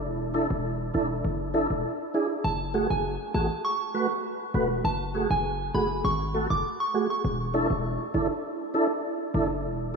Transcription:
0.05 808-style bass E1
0.34 tonewheel organ D4 E4 A4
0.50 808-style bass E1
0.94 808-style bass E1, tonewheel organ D4 E4 A4
1.24 808-style bass F#1
1.54 tonewheel organ D4 E4 A4
1.70 808-style bass E1
2.14 tonewheel organ D4 E4 G#4
2.44 808-style bass F#1, synth bell A5
2.74 tonewheel organ A3 F#4 G#4
2.90 808-style bass F#1, synth bell G#5
3.34 808-style bass A1, tonewheel organ A3 F#4 G#4, synth bell A5
3.65 synth bell C#6
3.94 tonewheel organ A3 F#4 B4
4.54 808-style bass E1, tonewheel organ A3 F#4 B4
4.84 808-style bass F#1, synth bell A5
5.14 tonewheel organ A3 F#4 G#4
5.30 808-style bass F#1, synth bell G#5
5.74 808-style bass F#1, tonewheel organ A3 F#4 G#4, synth bell B5
6.04 808-style bass G#1, synth bell C#6
6.34 tonewheel organ A3 F#4 A4
6.50 808-style bass F#1, synth bell D6
6.80 synth bell C#6
6.94 tonewheel organ A3 F#4 G#4
7.10 synth bell C#6
7.24 808-style bass E1
7.54 tonewheel organ D4 E4 A4
7.70 808-style bass E1
8.14 808-style bass F#1, tonewheel organ D4 E4 A4
8.74 tonewheel organ D4 E4 A4
9.34 808-style bass F#1, tonewheel organ D4 E4 A4
9.64 808-style bass E1

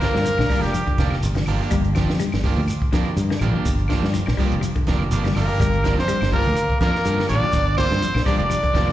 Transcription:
0.00 clean electric guitar D3 F3 A#3 D4 G4, alto saxophone A#3, trumpet A#4, kick, snare, closed hi-hat, claves, shekere
0.15 fingered electric bass G2, snare
0.25 clean electric guitar F3, closed hi-hat, shekere
0.38 fingered electric bass A#1, clean electric guitar D3, snare, claves
0.49 clean electric guitar F3 G3 A#3 D4 G4, kick, open hi-hat, shekere
0.62 fingered electric bass F1, alto saxophone G3, trumpet G4, snare, closed hi-hat
0.73 clean electric guitar F3, closed hi-hat, claves, shekere
0.87 clean electric guitar D3, muted fingered electric bass stroke, kick, closed hi-hat
0.98 fingered electric bass F1, clean electric guitar F3 A#3 D4 G4, kick, snare, closed hi-hat, shekere
1.10 snare, claves
1.23 fingered electric bass G1, closed hi-hat, shekere
1.35 clean electric guitar F3, snare, closed hi-hat
1.46 fingered electric bass G1, clean electric guitar F3 A#3 D4 G4, open hi-hat, claves, shekere
1.61 clean electric guitar A#3 D4 G4
1.71 fingered electric bass G1, clean electric guitar G3, kick, closed hi-hat, shekere
1.84 closed hi-hat
1.95 clean electric guitar F3 D4 G4, muted clean electric guitar stroke, kick, snare, closed hi-hat, claves, shekere
2.09 fingered electric bass F2, snare
2.20 clean electric guitar G3, closed hi-hat, shekere
2.32 fingered electric bass G1, snare, closed hi-hat, claves
2.44 clean electric guitar F3 A#3 D4 G4, muted clean electric guitar stroke, kick, open hi-hat, shekere
2.57 fingered electric bass D2
2.68 closed hi-hat, claves, shekere
2.82 muted fingered electric bass stroke, kick
2.92 fingered electric bass F2, clean electric guitar D3 F3 A#3 D4 G4, kick, snare, closed hi-hat, shekere
3.05 claves
3.17 fingered electric bass G2, closed hi-hat, shekere
3.30 clean electric guitar D3, muted fingered electric bass stroke, snare
3.39 fingered electric bass A#1, clean electric guitar F3 A#3 D4 G4, closed hi-hat, claves, shekere
3.54 clean electric guitar F3 A#3 D4 G4
3.65 fingered electric bass G1, kick, closed hi-hat, shekere
3.79 closed hi-hat
3.88 clean electric guitar D3 F3 A#3 D4 G4, kick, snare, closed hi-hat, claves, shekere
4.03 fingered electric bass G2, snare
4.14 clean electric guitar F3, closed hi-hat, shekere
4.26 fingered electric bass A#1, clean electric guitar F3, snare, claves
4.37 clean electric guitar F3 G3 A#3 D4 G4, kick, open hi-hat, shekere
4.52 fingered electric bass F1, closed hi-hat
4.61 clean electric guitar F3, closed hi-hat, claves, shekere
4.76 clean electric guitar D3, muted fingered electric bass stroke, kick, closed hi-hat
4.87 fingered electric bass F1, clean electric guitar F3 A#3 D4 G4, kick, snare, closed hi-hat, shekere
4.99 claves
5.11 fingered electric bass G1, clean electric guitar F3 A#3 D4 G4, closed hi-hat, shekere
5.24 clean electric guitar G3, snare, closed hi-hat
5.35 fingered electric bass G1, clean electric guitar F3 A#3 D4 G4, alto saxophone A#3, trumpet A#4, snare, open hi-hat, claves, shekere
5.49 clean electric guitar A#3 D4 G4
5.60 fingered electric bass G1, clean electric guitar G3, kick, closed hi-hat, shekere
5.74 closed hi-hat
5.83 clean electric guitar F3 A#3 D4 G4, kick, snare, closed hi-hat, claves, shekere
5.98 fingered electric bass F2, alto saxophone C4, trumpet C5, snare
6.08 clean electric guitar G3, closed hi-hat, shekere
6.21 fingered electric bass G1, snare, closed hi-hat, claves
6.32 clean electric guitar F3 A#3 D4 G4, alto saxophone A#3, trumpet A#4, kick, open hi-hat, shekere
6.46 fingered electric bass D2
6.56 closed hi-hat, claves, shekere
6.70 muted fingered electric bass stroke, kick
6.81 fingered electric bass F2, clean electric guitar F3 A#3 D4 G4, alto saxophone A#3, trumpet A#4, kick, snare, closed hi-hat, shekere
6.93 snare, claves
7.05 fingered electric bass G2, clean electric guitar F3 A#3 D4 G4, closed hi-hat, shekere
7.18 clean electric guitar D3, muted fingered electric bass stroke, snare
7.28 fingered electric bass A#1, clean electric guitar F3 A#3 D4 G4, alto saxophone D4, trumpet D5, snare, closed hi-hat, claves, shekere
7.43 clean electric guitar F3
7.53 fingered electric bass G1, kick, snare, closed hi-hat, shekere
7.67 closed hi-hat
7.77 clean electric guitar D3 F3 A#3 D4 G4, alto saxophone C4, trumpet C5, kick, snare, closed hi-hat, claves, shekere
7.91 fingered electric bass G2, snare
8.02 clean electric guitar F3, closed hi-hat, shekere
8.15 fingered electric bass A#1, clean electric guitar D3, snare, claves
8.25 clean electric guitar F3 G3 A#3 D4 G4, alto saxophone D4, trumpet D5, kick, snare, open hi-hat, shekere
8.38 fingered electric bass F1, alto saxophone D4, trumpet D5, closed hi-hat
8.50 clean electric guitar F3, closed hi-hat, claves, shekere
8.63 clean electric guitar D3, muted fingered electric bass stroke, kick, closed hi-hat
8.73 fingered electric bass F1, clean electric guitar F3 A#3 D4 G4, kick, snare, closed hi-hat, shekere
8.87 snare, claves

